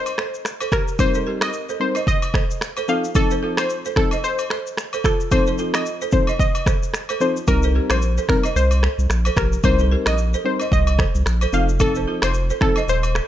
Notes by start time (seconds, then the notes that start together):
Already playing: C5
0.06 high agogo, shaker
0.18 A4 C5, finger snap, cross-stick
0.34 shaker
0.45 finger snap, cross-stick, shaker
0.60 A4 C5, high agogo, shaker
0.72 G4 A#4, finger snap, kick, cross-stick, shaker
0.88 shaker
0.99 G3 C4 D#4 A#4 C5, kick, high agogo, shaker
1.14 A4 C5, shaker
1.26 G4 A#4
1.41 D#5, finger snap, cross-stick, high agogo, shaker
1.53 shaker
1.69 A4 C5, shaker
1.80 G3 C4 D#4 A#4 C5
1.95 C5 D#5, high agogo, shaker
2.07 D#5, kick, shaker
2.22 high agogo, shaker
2.34 A4 C5, finger snap, kick, cross-stick
2.51 shaker
2.61 finger snap, cross-stick, shaker
2.77 A4 C5, high agogo, shaker
2.88 F3 C4 D#4 F4 A4 F5, shaker
3.04 shaker
3.15 F3 C4 D#4 A4, kick, high agogo, shaker
3.31 A4 C5, shaker
3.43 F4 A4
3.57 C5, finger snap, cross-stick, high agogo, shaker
3.70 shaker
3.85 A4 C5, shaker
3.96 F3 C4 D#4 A4, finger snap, kick, cross-stick
4.11 C5 D#5, high agogo, shaker
4.24 C5, shaker
4.39 high agogo, shaker
4.50 A4 C5, finger snap, cross-stick
4.67 shaker
4.77 finger snap, cross-stick, shaker
4.93 A4 C5, high agogo, shaker
5.04 F4 A4, finger snap, kick, cross-stick, shaker
5.21 shaker
5.31 F3 C4 D#4 A4 C5, kick, high agogo, shaker
5.47 A4 C5, shaker
5.58 F4 A4, shaker
5.74 D#5, finger snap, cross-stick, high agogo, shaker
5.86 shaker
6.02 A4 C5, shaker
6.12 F3 C4 D#4 A4 C5, kick, shaker
6.27 C5 D#5, high agogo, shaker
6.39 D#5, kick, shaker
6.55 high agogo, shaker
6.66 A4 C5, finger snap, kick, cross-stick, shaker
6.83 shaker
6.94 finger snap, cross-stick, shaker
7.09 A4 C5, high agogo, shaker
7.20 F3 C4 D#4 F4 A4 C5, shaker
7.37 shaker
7.47 C2 G3 C4 D#4 A#4, kick, high agogo, shaker
7.63 A4 C5, shaker
7.75 G4 A#4
7.90 A#1 C5, finger snap, cross-stick, high agogo, shaker
8.02 shaker
8.18 A4 C5, shaker
8.28 G3 C4 D#4 A#4, finger snap, kick, cross-stick
8.43 C5 D#5, high agogo, shaker
8.56 C2 C5, shaker
8.71 high agogo, shaker
8.83 A4 C5, finger snap, cross-stick
8.98 C2, shaker
9.09 A#1, finger snap, cross-stick, shaker
9.25 A4 C5, high agogo, shaker
9.37 A#1 G4 A#4, finger snap, kick, cross-stick, shaker
9.53 shaker
9.63 C2 G3 C4 D#4 A#4 C5, kick, high agogo, shaker
9.79 A4 C5, shaker
9.91 G4 A#4
10.06 A#1 D#5, finger snap, cross-stick, high agogo, shaker
10.18 shaker
10.34 A4 C5, shaker
10.44 G3 C4 D#4 A#4 C5
10.60 C5 D#5, high agogo, shaker
10.72 C2 D#5, kick, shaker
10.87 high agogo, shaker
10.99 A4 C5, finger snap, kick, cross-stick
11.14 C2, shaker
11.26 A#1, finger snap, cross-stick, shaker
11.41 A4 C5, high agogo, shaker
11.53 F1 F3 C4 D#4 F4 A4 F5, shaker
11.69 shaker
11.80 F3 C4 D#4 A4, kick, high agogo, shaker
11.95 A4 C5, shaker
12.07 F4 A4
12.22 F1 C5, finger snap, cross-stick, high agogo, shaker
12.34 shaker
12.50 A4 C5, shaker
12.61 F3 C4 D#4 A4, finger snap, kick, cross-stick
12.76 C5 D#5, high agogo, shaker
12.88 D#1 C5, shaker
13.03 high agogo, shaker
13.15 A4 C5, finger snap, cross-stick